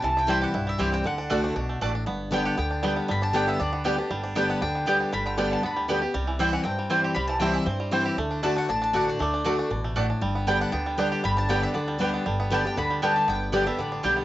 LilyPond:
<<
  \new Staff \with { instrumentName = "Mandolin" } { \time 4/4 \key g \major \tempo 4 = 236 a''8 g''8 e''8 fis''4 e''4 g''8 | fis''2. r4 | r4 g''8 fis''8 g''2 | b''8 a''8 g''8 e''8 d''4. r8 |
r4 g''8 fis''8 g''2 | b''8 g''8 g''8 a''8 b''4. r8 | r4 g''8 fis''8 g''2 | b''8 a''8 g''8 e''8 c''4. r8 |
r4 a''8 fis''8 a''8 a''8 fis''8 d''8 | d''2. r4 | r4 g''8 fis''8 g''2 | b''8 a''8 g''8 e''8 d''4. r8 |
r4 a''8 g''8 b''4 a''4 | g''4. e''8 d''4. r8 | }
  \new Staff \with { instrumentName = "Mandolin" } { \time 4/4 \key g \major r4 <c' e' c'' g''>8 r4. <c' e' c'' g''>8 r8 | r4 <a fis' d'' a''>8 r4. <a fis' d'' a''>8 r8 | r4 <b g' d'' g''>8 r4. <b g' d'' g''>8 r8 | r4 <b g' d'' g''>8 r4. <b g' d'' g''>8 r8 |
r4 <b g' d'' g''>8 r4. <b g' d'' g''>8 r8 | r4 <b g' d'' g''>8 r4. <b g' d'' g''>8 r8 | r4 <c' e' c'' g''>8 r4. <c' e' c'' g''>8 r8 | r4 <c' e' c'' g''>8 r4. <c' e' c'' g''>8 r8 |
r4 <a fis' d'' a''>8 r4. <a fis' d'' a''>8 r8 | r4 <a fis' d'' a''>8 r4. <a fis' d'' a''>8 r8 | r4 <b g' d'' g''>8 r4. <b g' d'' g''>8 r8 | r4 <b g' d'' g''>8 r4. <b g' d'' g''>8 r8 |
r4 <b g' d'' g''>8 r4. <b g' d'' g''>8 r8 | r4 <b g' d'' g''>8 r4. <b g' d'' g''>8 r8 | }
  \new Staff \with { instrumentName = "Five-string banjo" } { \time 4/4 \key g \major e8 e'8 g8 g'8 e'8 g8 g'8 c'8 | d8 d'8 a8 d'8 d'8 a8 d'8 d'8 | b4 b8 g'8 b8 d'8 g8 b8 | g8 d'8 g8 b8 d'8 b8 g'8 d'8 |
g8 d'8 g8 b8 d'8 b8 g'8 d'8 | g8 d8 d'8 d8 b8 g8 b8 g'8 | g8 e8 e'8 e8 c'8 g8 c'8 g'8 | g8 e8 e'8 e8 c'8 g8 c'8 g'8 |
a8 d'8 a8 d'8 d'8 d'8 d'8 d'8 | a8 d'8 d'8 d'8 d'8 a8 d'8 d'8 | g8 b8 g8 d'8 b8 g8 d'8 g'8 | g8 d'8 d8 d'8 b8 g8 d'8 b8 |
g8 b8 g8 d'8 b8 g8 d'8 g'8 | b4 d'8 g8 b8 d'8 g8 b8 | }
  \new Staff \with { instrumentName = "Steel-string acoustic guitar" } { \clef bass \time 4/4 \key g \major << { r4 <e g c' e'>4 r4 <e g c' e'>4 | r4 <d a d' fis'>4 r2 | r4 <d g b g'>4 r4 <d g b g'>4 | r4 <d g b g'>4 r4 <d g b g'>8 <b g'>8 |
r4 <d g b g'>4 r4 <d g b g'>4 | r4 <d g b g'>4 r4 <d g b g'>8 <b g'>8 | r4 <e g c' e'>4 r4 <e g c' e'>4 | r4 <e g c' e'>4 r4 <e g c' e'>4 |
r4 <d a d' fis'>4 r4 <d a d' fis'>4 | r4 <d a d' fis'>4 r2 | r4 <d g b g'>4 r4 <d g b g'>4 | r4 <d g b g'>4 r4 <d g b g'>4 |
r4 <d g b g'>8 <b g'>8 r4 <d g b g'>4 | r4 <d g b g'>8 <b g'>8 r4 <d g b g'>4 | } \\ { c2 g,2 | d2 b,4 a,4 | g,2 d2 | g,2 d2 |
g,2 d2 | g,2 d2 | c2 g,2 | c2 g,2 |
d2 a,2 | d2 b,4 a,4 | g,2 d2 | g,2 d2 |
g,2 d2 | g,2 d2 | } >> }
  \new Staff \with { instrumentName = "Upright bass" } { \clef bass \time 4/4 \key g \major c,2 b,,4 c,4 | d,4 c,4 b,,4 a,,4 | g,,2 d,2 | g,,2 d,2 |
g,,2 d,2 | g,,2 d,2 | c,2 g,2 | c,2 g,2 |
d,2 a,,2 | d,2 a,,2 | g,,2 d,2 | g,,2 d,2 |
g,,2 d,2 | g,,2 a,,4 b,,4 | }
>>